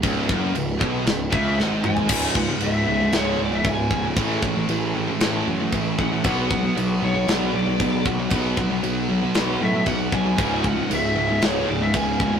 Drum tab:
CC |x---x---x-------|x---x---x---x---|x---x---x---x---|x---x---x---x---|
SD |--------o---o---|--------o-------|--------o-------|--------o-------|
T2 |--------------o-|----------------|----------------|----------------|
FT |---------------o|----------------|----------------|----------------|
BD |o-o---o---o-----|o-o---------o-o-|o-o---------o-o-|o-o---------o-o-|

CC |x---x---x---x---|x---x---x---x---|
SD |--------o-------|--------o-------|
T2 |----------------|----------------|
FT |----------------|----------------|
BD |o-o---------o-o-|o-o---------o-o-|